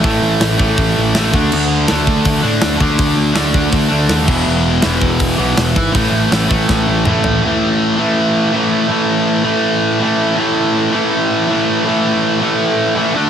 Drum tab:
CC |--------|x-------|-------x|--------|
HH |o-o-o-o-|--o-o-o-|o-o-o-o-|--o-o-o-|
SD |--o---o-|--o---o-|--o---o-|--o---o-|
T2 |--------|--------|--------|--------|
FT |--------|--------|--------|--------|
BD |o--oo--o|---oo--o|o--oo--o|---oo--o|

CC |--------|--------|--------|--------|
HH |o-o-----|--------|--------|--------|
SD |--o-o---|--------|--------|--------|
T2 |------o-|--------|--------|--------|
FT |-------o|--------|--------|--------|
BD |o--oo---|--------|--------|--------|

CC |--------|
HH |--------|
SD |--------|
T2 |--------|
FT |--------|
BD |--------|